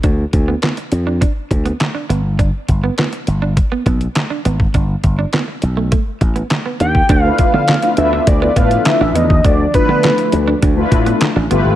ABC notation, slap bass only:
X:1
M:4/4
L:1/16
Q:1/4=102
K:Ddor
V:1 name="Slap bass" clef=bass
D,,2 D,,2 z2 F,,3 z D,,2 z2 G,,,2- | G,,,2 G,,,2 z2 G,,,3 z B,,,2 z2 ^G,,,2 | G,,,2 G,,,2 z2 B,,,3 z A,,,2 z2 _E,,2 | D,,2 z D,2 z D,,2 D,,2 A,,2 z A,,, E,, _E,, |
D,,2 z D,2 z D,,2 D,,2 A,,2 z A,,, G,,, ^G,,, |]